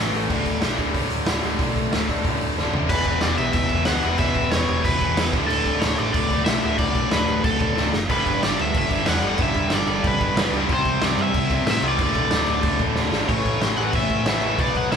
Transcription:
Already playing: A1 A2 E3 A3
0.12 A1 A2 E3 A3, open hi-hat
0.29 D1 D2 A2 D3, kick, crash
0.46 D1, kick, open hi-hat
0.61 B1 D2 A2 D3, snare, open hi-hat
0.77 D1 D2 A2 D3, kick, open hi-hat
0.93 D1 D2 A2 D3, kick, open hi-hat
1.09 D1, open hi-hat
1.26 D1 D2 A2 D3, snare, open hi-hat
1.42 D1 D2 A2 D3, open hi-hat
1.58 B1 D2 A2 D3, kick, open hi-hat
1.76 B1, kick, open hi-hat
1.91 D1 D2 A2 D3, snare, open hi-hat
2.09 D1 D2 A2 D3, kick, open hi-hat
2.25 D1 D2 A2 D3, kick, open hi-hat
2.41 D1, open hi-hat
2.57 D1 D2 A2 D3, snare
2.72 D1 D2 A2 D3, floor tom
2.89 E1 E2 B2 E3 B4, kick, crash
3.05 E1, kick, crash
3.21 E1 D5, snare, crash
3.38 B1 E5, crash
3.53 E1 E5, kick, crash
3.69 E1 E2 B2 E3, kick, crash
3.85 D2 E2 B2 F#5, snare, crash
3.90 E3
4.03 E1 E2 B2 E3, crash
4.18 E1 E2 B2 E3 E5, kick, crash
4.35 D1, kick, crash
4.52 E1 C#5, snare, crash
4.69 E1, crash
4.84 E1 B4, kick, crash
5.00 E1 E2 B2 E3, kick, crash
5.16 E1 E2 B2 E3, snare, crash
5.33 D1 D2 A2 D3, kick, crash
5.48 D1 A4, crash
5.65 D1, kick, crash
5.80 D1 C#5, snare, crash
5.98 A1 D5, crash
6.13 D1 D2 A2 D3 D5, kick, crash
6.29 D1 D2 A2 D3, kick, crash
6.45 B1 D2 A2 E5, snare, crash
6.50 D3
6.62 D1 D2 A2 D3, crash
6.78 D1 D5, kick, crash
6.95 B1, kick, crash
7.11 D1 B4, snare, crash
7.28 D1, crash
7.42 D1 D2 A2 D3 A4, kick, crash
7.58 D1 D2 A2 D3, kick, crash
7.76 D1 D2 A2 D3, snare
7.93 F#1, snare
8.07 G1 G2 D3 G3 B4, kick, crash
8.26 G1, kick, crash
8.43 G1 D5, snare, crash
8.59 D2 E5, crash
8.74 G1 E5, kick, crash
8.90 G1 G2 D3 G3, kick, crash
9.05 E2 G2 D3 G3 F#5, snare, crash
9.22 G1 G2 D3 G3, crash
9.37 G1 G2 D3, kick, crash
9.41 G3 E5
9.54 E1, kick, crash
9.70 G1, snare, crash
9.74 D5
9.87 G1, crash
10.04 G1 B4, kick, crash
10.20 G1 G2 D3 G3, kick, crash
10.35 G1 G2 D3 G3, snare, crash
10.52 C#2 G2 D3 G3, crash
10.68 C2 C3 G3 C4, kick, crash
10.74 C5
10.85 C2, kick, crash
11.02 C2 D5, snare, crash
11.17 G2 E5, crash
11.34 C2, kick, crash
11.49 C2 C3 G3 C4, kick, crash
11.65 A2 C3 G3 C4, snare, crash
11.71 E5
11.82 C2 C3 G3 C4, crash
11.88 D5
11.98 D1 D2 A2 D3, kick, crash
12.15 B1, kick, crash
12.31 D1, snare, crash
12.46 D1, crash
12.63 D1, kick, crash
12.79 D1 D2 A2 D3, kick, crash
12.96 D1 D2 A2 D3, snare
13.11 G#1 D2 A2 D3, snare
13.28 A1 A2 E3 A3 C#5, kick, crash
13.45 A1, kick, crash
13.61 A1 A2 E3 A3, snare, crash
13.75 A1 A2 E3 A3 F#5, crash
13.93 A1 A2 E3 A3 E5, kick, crash
14.10 A2, kick, crash
14.26 A1 A2 E3 A3 E5, snare, crash
14.42 A2 E3 A3, crash
14.57 B1 B2 F#3 B3 D5, kick, crash
14.75 F#5, kick, crash
14.90 B1 B2 F#3 B3 E5, snare, crash

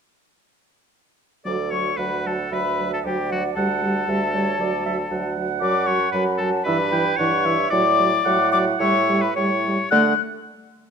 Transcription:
1.45 D2 F#3 A4 D5 D6
1.71 F#3 C#5 C#6
1.97 D2 F#3 B4 F#5 B5
2.26 F#3 A4 A5
2.52 D2 F#3 B4 E5 B5
2.79 F#3
2.93 A4 A5
3.05 D2 F#3 G4 D5 G5
3.30 F#3 F#4 F#5
3.54 D2 G3 A4 F#5 A5
3.82 G3
4.08 D2 G3 E5
4.34 G3 C#5
4.59 D2 F#3 D5
4.86 F#3 E5
5.11 D2 F#3 F#5
5.37 F#3
5.61 F#2 F#3 D5 D6
5.86 F#3 C#5 C#6
6.12 F#2 F#3 B4 B5
6.38 F#3 A4 A5
6.64 G2 B4 E5 B5
6.68 E3
6.92 E3 G5
7.16 G2 E3 C#5 F#5 C#6
7.45 E3 E5
7.70 A2 F#3 D5 D6
7.99 F#3
8.24 A2 F#3 F#5
8.52 F#3 D5 D6
8.79 A2 G3 C#5 E5 C#6
9.09 G3
9.21 B4 B5
9.35 A2 G3 C#5 C#6
9.65 G3
9.90 D3 A3 A4 F#5 F#6

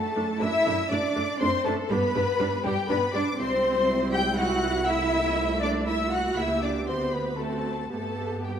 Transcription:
Already playing: A3 A4 A5
0.15 F#2 A3 D4
0.40 F#2 A3 D4 E4 E5 E6
0.66 F#2 A3 D4
0.90 F#2 A3 D4 D5 D6
1.15 F#2 A3 D4
1.40 F#2 A3 C4 D4 C5 C6
1.65 F#2 A3 D4 A4 A5
1.89 G2 G3 B3 D4 B4 B5
2.14 G2 G3 D4
2.40 G2 G3 D4
2.64 G2 G3 D4 G4 G5
2.89 G2 G3 B3 D4 B4 B5
3.13 G2 G3 D4 D5 D6
3.38 C2 G3 C4 E4 C5 C6
4.12 G4 G5 G6
4.36 F#4 F#5 F#6
4.86 A3 E4 E5 E6
5.61 D4 D5 D6
5.86 E4 E5 E6
6.12 F#4 F#5 F#6
6.36 C#2 A#3 E4 G4 E5 E6
6.62 D4 D5 D6
6.87 D2 B3 C4 C5 C6
7.12 B3 B4 B5
7.38 A3 C4 F#4 A4 A5
7.90 G2 A3 B3 G4 A4 A5
8.45 G3 G4 G5

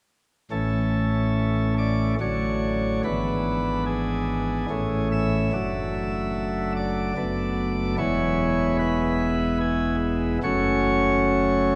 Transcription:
0.51 A1 A2 E3 A3 C#4 A4
1.78 D5
2.20 A1 A2 D3 F#3 D4 C#5
3.04 G#1 G#2 E3 B3 D4 B4
3.86 G#4
4.70 A1 A2 E3 A3 C#4
5.12 E5
5.53 F#1 F#2 F#3 A3 D4
6.76 D5
7.17 F#1 F#2 A3 B3 D4
7.98 E1 E2 G#3 B3 E4 C#5
8.79 B4
9.61 G#4
10.43 F#1 F#2 F#3 A3 C#4 C#5

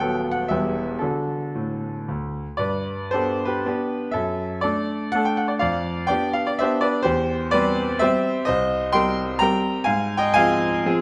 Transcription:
Already playing: D#1 D#2 F#5 G5
0.00 F#3 B3 A4
0.31 F#5
0.48 E1 E2 G3 B3 G4 E5
0.99 D3 D4 F#4 A4
1.55 A2
2.08 D2
2.57 G2 B4 D5
3.11 B3 D4 G4 A4 C5
3.45 G4 B4
3.66 B3 D4 G4
4.11 F#2 A4 E5
4.61 A3 D4 A4 D5
5.12 A3 D4 A4 F#5
5.25 G5
5.37 F#5
5.48 D5
5.59 F2 D5 F5
6.07 B3 D4 D5 G5
6.11 G4
6.33 F5
6.47 D5
6.59 B3 D4 G4 C5 E5
6.81 B4 D5
7.03 E2 G4 C5
7.51 G3 C4 G4 B4 D5
7.99 G3 C4 G4 C5 E5
8.45 C2 C5 D#5
8.93 G3 C4 A#4 G5 C6
9.39 G3 C4 A#4 G5 A#5
9.84 G#2 F5 G#5
10.17 D#5 G5
10.34 F3 C4 F5 G#5
10.38 G#4
10.86 F3 C4 G#4

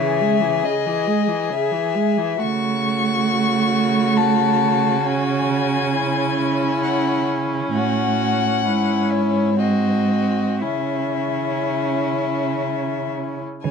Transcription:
Already playing: C#3 G#4 E5
0.00 E3
0.21 G#3
0.41 E3
0.64 C#3 D#5
0.86 E3
1.07 G#3
1.28 E3
1.50 C#3 E5
1.72 E3
1.95 G#3
2.18 E3
2.42 C#3 A3 F#4 C#6
4.17 A5
5.04 C#4 G#5
5.96 E4
6.83 F#5
7.74 A2 F#4 F#5
8.66 G#2 E4
9.12 C#5
9.59 C4 F#4 D#5
10.61 C#3 C#4 E4 E5
13.64 C#3 C#5 G#5

